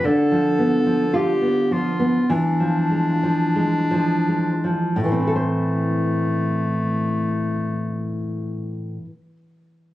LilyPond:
<<
  \new Staff \with { instrumentName = "Clarinet" } { \time 4/4 \key a \minor \tempo 4 = 48 a'4 g'8 f'8 d'2 | a1 | }
  \new Staff \with { instrumentName = "Nylon-string guitar" } { \clef bass \time 4/4 \key a \minor d16 f16 b16 f16 f'16 b16 f16 b16 e16 f16 gis16 f16 gis16 f16 gis16 f16 | <a, e c' e' a' c''>1 | }
>>